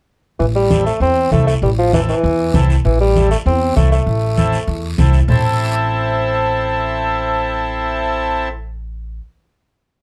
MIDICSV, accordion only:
0, 0, Header, 1, 2, 480
1, 0, Start_track
1, 0, Key_signature, 0, "minor"
1, 0, Tempo, 305188
1, 634, Time_signature, 4, 2, 24, 8
1, 15763, End_track
2, 0, Start_track
2, 0, Title_t, "Accordion"
2, 0, Program_c, 0, 21
2, 1098, Note_on_c, 0, 60, 71
2, 1102, Note_on_c, 0, 64, 61
2, 1109, Note_on_c, 0, 69, 68
2, 1444, Note_off_c, 0, 60, 0
2, 1446, Note_off_c, 0, 64, 0
2, 1449, Note_off_c, 0, 69, 0
2, 2065, Note_on_c, 0, 60, 63
2, 2075, Note_on_c, 0, 64, 58
2, 2077, Note_on_c, 0, 69, 69
2, 2408, Note_off_c, 0, 60, 0
2, 2414, Note_off_c, 0, 64, 0
2, 2415, Note_off_c, 0, 69, 0
2, 3042, Note_on_c, 0, 64, 66
2, 3044, Note_on_c, 0, 60, 66
2, 3051, Note_on_c, 0, 69, 75
2, 3378, Note_off_c, 0, 64, 0
2, 3379, Note_off_c, 0, 60, 0
2, 3382, Note_off_c, 0, 69, 0
2, 3992, Note_on_c, 0, 60, 77
2, 3999, Note_on_c, 0, 64, 73
2, 4008, Note_on_c, 0, 69, 93
2, 4333, Note_off_c, 0, 60, 0
2, 4336, Note_off_c, 0, 64, 0
2, 4340, Note_off_c, 0, 69, 0
2, 4958, Note_on_c, 0, 60, 73
2, 4966, Note_on_c, 0, 64, 65
2, 4972, Note_on_c, 0, 69, 77
2, 5295, Note_off_c, 0, 60, 0
2, 5299, Note_off_c, 0, 64, 0
2, 5302, Note_off_c, 0, 69, 0
2, 5910, Note_on_c, 0, 60, 66
2, 5919, Note_on_c, 0, 64, 56
2, 5922, Note_on_c, 0, 69, 66
2, 6251, Note_off_c, 0, 60, 0
2, 6255, Note_off_c, 0, 64, 0
2, 6257, Note_off_c, 0, 69, 0
2, 6867, Note_on_c, 0, 60, 84
2, 6872, Note_on_c, 0, 64, 74
2, 6878, Note_on_c, 0, 69, 92
2, 7208, Note_off_c, 0, 60, 0
2, 7211, Note_off_c, 0, 64, 0
2, 7214, Note_off_c, 0, 69, 0
2, 7835, Note_on_c, 0, 60, 69
2, 7840, Note_on_c, 0, 64, 67
2, 7850, Note_on_c, 0, 69, 80
2, 8172, Note_off_c, 0, 60, 0
2, 8174, Note_off_c, 0, 64, 0
2, 8179, Note_off_c, 0, 69, 0
2, 8315, Note_on_c, 0, 64, 74
2, 8316, Note_on_c, 0, 69, 101
2, 8318, Note_on_c, 0, 60, 85
2, 13348, Note_off_c, 0, 64, 0
2, 13349, Note_off_c, 0, 69, 0
2, 13350, Note_off_c, 0, 60, 0
2, 15763, End_track
0, 0, End_of_file